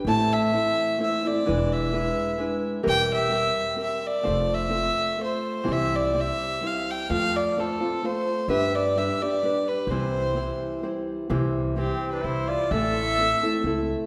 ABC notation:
X:1
M:3/4
L:1/16
Q:1/4=128
K:C
V:1 name="Violin"
a2 e6 e2 d2- | d2 e8 z2 | g2 e6 e2 d2- | d2 e6 c4 |
e2 d2 e4 f2 g2 | f2 d2 A4 c4 | e2 d2 e2 d4 B2 | c8 z4 |
z4 G3 B c2 d2 | e8- e2 z2 |]
V:2 name="Trumpet"
z12 | z12 | z12 | z12 |
z12 | z12 | z12 | z12 |
z4 C3 D E2 F2 | A8- A2 z2 |]
V:3 name="Nylon-string guitar"
[A,,E,A,CEc]4 [A,CEc]4 [A,CEc]2 [A,CEc]2 | [E,^G,DEB]4 [G,DEB]4 [G,DEB]4 | [E,G,CG_B]4 [G,CGB]4 [G,CGB]4 | [F,A,CFc]4 [A,CFc]4 [A,CFc]4 |
[C,E,G,CEc]4 [G,CEc]4 [G,CEc]4 | [F,A,CFc]4 [A,CFc]2 [CFc]2 [A,CFc]4 | [G,DGB]4 [G,DGB]2 [DGB]2 [G,DGB]4 | [C,E,G,CEc]4 [G,CEc]4 [G,CEc]4 |
[C,E,G,CEc]4 [G,CEc]4 [G,CEc]4 | [A,,E,A,CEA]4 [A,CEA]2 [A,CEA]2 [A,CEA]4 |]
V:4 name="Upright bass" clef=bass
A,,,8 z4 | E,,,8 z4 | E,,,8 z4 | F,,,8 z4 |
C,,8 z4 | F,,8 z4 | G,,8 z4 | C,,8 z4 |
C,,8 C,,4 | A,,,8 _D,,4 |]